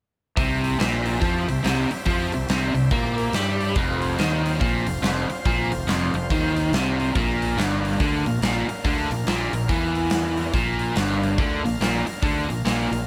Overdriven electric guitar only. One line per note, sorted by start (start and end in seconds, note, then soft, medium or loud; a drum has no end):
0.37 0.79 C3 loud
0.79 1.20 A#2 loud
1.21 1.47 F3 loud
1.49 1.61 C3 medium
1.64 1.90 C3 loud
1.91 muted overdriven electric guitar stroke medium
2.06 2.32 F3 loud
2.34 2.46 C3 medium
2.50 2.73 C3 medium
2.75 2.88 C3 medium
2.92 3.34 A#3 loud
3.34 3.76 G3 loud
3.76 4.18 F2 loud
4.19 4.60 D#3 loud
4.60 4.86 A#2 loud
4.87 5.00 F2 medium
5.02 5.28 F2 loud
5.30 muted overdriven electric guitar stroke medium
5.46 5.71 A#2 loud
5.71 5.84 F2 medium
5.87 6.13 F2 loud
6.15 6.27 F2 medium
6.31 6.73 D#3 loud
6.74 7.15 C3 loud
7.15 7.57 A#2 loud
7.57 7.99 G2 loud
8.00 8.25 D3 loud
8.26 8.39 A#2 medium
8.43 8.68 A#2 loud
8.69 muted overdriven electric guitar stroke medium
8.85 9.10 D3 loud
9.12 9.24 A#2 medium
9.27 9.52 A#2 medium
9.54 9.66 A#2 medium
9.69 10.53 E3 loud
10.54 10.95 A#2 loud
10.96 11.37 G2 loud
11.38 11.63 D3 loud
11.64 11.77 A#2 medium
11.81 12.05 A#2 loud
12.06 muted overdriven electric guitar stroke medium
12.23 12.48 D3 loud
12.49 12.61 A#2 medium
12.65 12.90 A#2 loud
12.92 13.04 A#2 medium